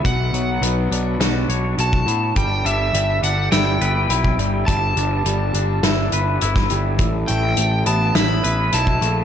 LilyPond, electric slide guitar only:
\new Staff \with { instrumentName = "Electric slide guitar" } { \time 4/4 \key g \lydian \tempo 4 = 104 fis''2 r4 a''4 | g''8 e''4 fis''8 g''2 | a''2 r2 | r8 g''4 a''8 b''4 a''4 | }